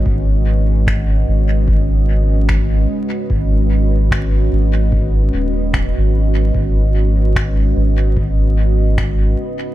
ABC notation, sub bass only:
X:1
M:4/4
L:1/16
Q:"Swing 16ths" 1/4=74
K:G#m
V:1 name="Sub bass" clef=bass
G,,,6 G,,,8 z2 | G,,,6 G,,,4 D,,,3 G,,,3 | G,,,6 G,,,8 z2 |]